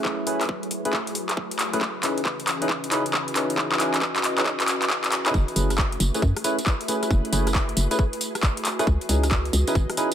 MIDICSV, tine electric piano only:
0, 0, Header, 1, 2, 480
1, 0, Start_track
1, 0, Tempo, 441176
1, 51, Time_signature, 4, 2, 24, 8
1, 11035, End_track
2, 0, Start_track
2, 0, Title_t, "Tine electric piano"
2, 0, Program_c, 0, 4
2, 0, Note_on_c, 0, 57, 74
2, 0, Note_on_c, 0, 61, 66
2, 0, Note_on_c, 0, 64, 72
2, 0, Note_on_c, 0, 68, 71
2, 0, Note_on_c, 0, 71, 83
2, 270, Note_off_c, 0, 64, 0
2, 271, Note_off_c, 0, 57, 0
2, 271, Note_off_c, 0, 61, 0
2, 271, Note_off_c, 0, 68, 0
2, 271, Note_off_c, 0, 71, 0
2, 291, Note_on_c, 0, 64, 66
2, 291, Note_on_c, 0, 68, 65
2, 292, Note_on_c, 0, 57, 69
2, 292, Note_on_c, 0, 61, 65
2, 292, Note_on_c, 0, 71, 77
2, 468, Note_off_c, 0, 57, 0
2, 468, Note_off_c, 0, 61, 0
2, 468, Note_off_c, 0, 64, 0
2, 468, Note_off_c, 0, 68, 0
2, 468, Note_off_c, 0, 71, 0
2, 927, Note_on_c, 0, 61, 74
2, 927, Note_on_c, 0, 64, 72
2, 927, Note_on_c, 0, 68, 72
2, 927, Note_on_c, 0, 71, 89
2, 928, Note_on_c, 0, 57, 83
2, 1051, Note_off_c, 0, 57, 0
2, 1051, Note_off_c, 0, 61, 0
2, 1051, Note_off_c, 0, 64, 0
2, 1051, Note_off_c, 0, 68, 0
2, 1051, Note_off_c, 0, 71, 0
2, 1887, Note_on_c, 0, 57, 91
2, 1887, Note_on_c, 0, 61, 89
2, 1887, Note_on_c, 0, 64, 85
2, 1887, Note_on_c, 0, 68, 85
2, 1887, Note_on_c, 0, 71, 105
2, 1961, Note_off_c, 0, 57, 0
2, 1961, Note_off_c, 0, 61, 0
2, 1961, Note_off_c, 0, 64, 0
2, 1961, Note_off_c, 0, 68, 0
2, 1961, Note_off_c, 0, 71, 0
2, 2212, Note_on_c, 0, 61, 70
2, 2212, Note_on_c, 0, 63, 65
2, 2212, Note_on_c, 0, 64, 66
2, 2212, Note_on_c, 0, 68, 68
2, 2212, Note_on_c, 0, 71, 82
2, 2388, Note_off_c, 0, 61, 0
2, 2388, Note_off_c, 0, 64, 0
2, 2388, Note_off_c, 0, 68, 0
2, 2389, Note_off_c, 0, 63, 0
2, 2389, Note_off_c, 0, 71, 0
2, 2847, Note_on_c, 0, 61, 85
2, 2847, Note_on_c, 0, 63, 82
2, 2847, Note_on_c, 0, 64, 81
2, 2847, Note_on_c, 0, 68, 79
2, 2847, Note_on_c, 0, 71, 96
2, 2913, Note_off_c, 0, 61, 0
2, 2913, Note_off_c, 0, 63, 0
2, 2913, Note_off_c, 0, 64, 0
2, 2913, Note_off_c, 0, 68, 0
2, 2913, Note_off_c, 0, 71, 0
2, 3171, Note_on_c, 0, 61, 94
2, 3171, Note_on_c, 0, 64, 81
2, 3171, Note_on_c, 0, 68, 84
2, 3172, Note_on_c, 0, 63, 81
2, 3172, Note_on_c, 0, 71, 100
2, 3293, Note_off_c, 0, 61, 0
2, 3293, Note_off_c, 0, 63, 0
2, 3293, Note_off_c, 0, 64, 0
2, 3293, Note_off_c, 0, 68, 0
2, 3293, Note_off_c, 0, 71, 0
2, 3651, Note_on_c, 0, 61, 78
2, 3651, Note_on_c, 0, 63, 69
2, 3651, Note_on_c, 0, 64, 70
2, 3651, Note_on_c, 0, 68, 73
2, 3651, Note_on_c, 0, 71, 83
2, 4110, Note_off_c, 0, 64, 0
2, 4111, Note_off_c, 0, 61, 0
2, 4111, Note_off_c, 0, 63, 0
2, 4111, Note_off_c, 0, 68, 0
2, 4111, Note_off_c, 0, 71, 0
2, 4131, Note_on_c, 0, 68, 62
2, 4132, Note_on_c, 0, 61, 73
2, 4132, Note_on_c, 0, 63, 64
2, 4132, Note_on_c, 0, 64, 65
2, 4132, Note_on_c, 0, 71, 77
2, 4308, Note_off_c, 0, 61, 0
2, 4308, Note_off_c, 0, 63, 0
2, 4308, Note_off_c, 0, 64, 0
2, 4308, Note_off_c, 0, 68, 0
2, 4308, Note_off_c, 0, 71, 0
2, 4767, Note_on_c, 0, 61, 84
2, 4767, Note_on_c, 0, 63, 80
2, 4767, Note_on_c, 0, 64, 78
2, 4767, Note_on_c, 0, 68, 76
2, 4767, Note_on_c, 0, 71, 92
2, 4891, Note_off_c, 0, 61, 0
2, 4891, Note_off_c, 0, 63, 0
2, 4891, Note_off_c, 0, 64, 0
2, 4891, Note_off_c, 0, 68, 0
2, 4891, Note_off_c, 0, 71, 0
2, 5726, Note_on_c, 0, 61, 94
2, 5726, Note_on_c, 0, 63, 92
2, 5726, Note_on_c, 0, 64, 87
2, 5726, Note_on_c, 0, 68, 89
2, 5726, Note_on_c, 0, 71, 106
2, 5800, Note_off_c, 0, 61, 0
2, 5800, Note_off_c, 0, 63, 0
2, 5800, Note_off_c, 0, 71, 0
2, 5801, Note_off_c, 0, 64, 0
2, 5801, Note_off_c, 0, 68, 0
2, 6051, Note_on_c, 0, 57, 72
2, 6051, Note_on_c, 0, 61, 65
2, 6051, Note_on_c, 0, 64, 62
2, 6051, Note_on_c, 0, 68, 65
2, 6051, Note_on_c, 0, 71, 78
2, 6228, Note_off_c, 0, 57, 0
2, 6228, Note_off_c, 0, 61, 0
2, 6228, Note_off_c, 0, 64, 0
2, 6228, Note_off_c, 0, 68, 0
2, 6228, Note_off_c, 0, 71, 0
2, 6687, Note_on_c, 0, 57, 87
2, 6687, Note_on_c, 0, 61, 79
2, 6687, Note_on_c, 0, 64, 81
2, 6687, Note_on_c, 0, 68, 79
2, 6687, Note_on_c, 0, 71, 96
2, 6753, Note_off_c, 0, 57, 0
2, 6753, Note_off_c, 0, 61, 0
2, 6753, Note_off_c, 0, 64, 0
2, 6753, Note_off_c, 0, 68, 0
2, 6753, Note_off_c, 0, 71, 0
2, 7010, Note_on_c, 0, 57, 87
2, 7010, Note_on_c, 0, 71, 106
2, 7011, Note_on_c, 0, 61, 86
2, 7011, Note_on_c, 0, 64, 85
2, 7011, Note_on_c, 0, 68, 80
2, 7133, Note_off_c, 0, 57, 0
2, 7133, Note_off_c, 0, 61, 0
2, 7133, Note_off_c, 0, 64, 0
2, 7133, Note_off_c, 0, 68, 0
2, 7133, Note_off_c, 0, 71, 0
2, 7491, Note_on_c, 0, 57, 80
2, 7491, Note_on_c, 0, 61, 71
2, 7491, Note_on_c, 0, 64, 74
2, 7491, Note_on_c, 0, 71, 87
2, 7492, Note_on_c, 0, 68, 69
2, 7951, Note_off_c, 0, 57, 0
2, 7951, Note_off_c, 0, 61, 0
2, 7951, Note_off_c, 0, 64, 0
2, 7951, Note_off_c, 0, 68, 0
2, 7951, Note_off_c, 0, 71, 0
2, 7971, Note_on_c, 0, 68, 67
2, 7972, Note_on_c, 0, 57, 69
2, 7972, Note_on_c, 0, 61, 64
2, 7972, Note_on_c, 0, 64, 67
2, 7972, Note_on_c, 0, 71, 76
2, 8148, Note_off_c, 0, 57, 0
2, 8148, Note_off_c, 0, 61, 0
2, 8148, Note_off_c, 0, 64, 0
2, 8148, Note_off_c, 0, 68, 0
2, 8148, Note_off_c, 0, 71, 0
2, 8607, Note_on_c, 0, 57, 85
2, 8607, Note_on_c, 0, 61, 75
2, 8607, Note_on_c, 0, 64, 78
2, 8607, Note_on_c, 0, 68, 79
2, 8607, Note_on_c, 0, 71, 97
2, 8731, Note_off_c, 0, 57, 0
2, 8731, Note_off_c, 0, 61, 0
2, 8731, Note_off_c, 0, 64, 0
2, 8731, Note_off_c, 0, 68, 0
2, 8731, Note_off_c, 0, 71, 0
2, 9567, Note_on_c, 0, 57, 99
2, 9567, Note_on_c, 0, 61, 91
2, 9567, Note_on_c, 0, 64, 89
2, 9567, Note_on_c, 0, 68, 91
2, 9568, Note_on_c, 0, 71, 112
2, 9641, Note_off_c, 0, 57, 0
2, 9641, Note_off_c, 0, 61, 0
2, 9641, Note_off_c, 0, 64, 0
2, 9641, Note_off_c, 0, 68, 0
2, 9641, Note_off_c, 0, 71, 0
2, 9892, Note_on_c, 0, 61, 74
2, 9892, Note_on_c, 0, 63, 68
2, 9892, Note_on_c, 0, 64, 67
2, 9892, Note_on_c, 0, 68, 68
2, 9892, Note_on_c, 0, 71, 79
2, 10068, Note_off_c, 0, 68, 0
2, 10069, Note_off_c, 0, 61, 0
2, 10069, Note_off_c, 0, 63, 0
2, 10069, Note_off_c, 0, 64, 0
2, 10069, Note_off_c, 0, 71, 0
2, 10527, Note_on_c, 0, 61, 88
2, 10527, Note_on_c, 0, 64, 83
2, 10527, Note_on_c, 0, 71, 100
2, 10528, Note_on_c, 0, 63, 82
2, 10528, Note_on_c, 0, 68, 81
2, 10593, Note_off_c, 0, 61, 0
2, 10593, Note_off_c, 0, 63, 0
2, 10593, Note_off_c, 0, 64, 0
2, 10593, Note_off_c, 0, 68, 0
2, 10593, Note_off_c, 0, 71, 0
2, 10852, Note_on_c, 0, 61, 93
2, 10852, Note_on_c, 0, 63, 81
2, 10852, Note_on_c, 0, 64, 84
2, 10852, Note_on_c, 0, 68, 82
2, 10852, Note_on_c, 0, 71, 105
2, 10974, Note_off_c, 0, 61, 0
2, 10974, Note_off_c, 0, 63, 0
2, 10974, Note_off_c, 0, 64, 0
2, 10974, Note_off_c, 0, 68, 0
2, 10974, Note_off_c, 0, 71, 0
2, 11035, End_track
0, 0, End_of_file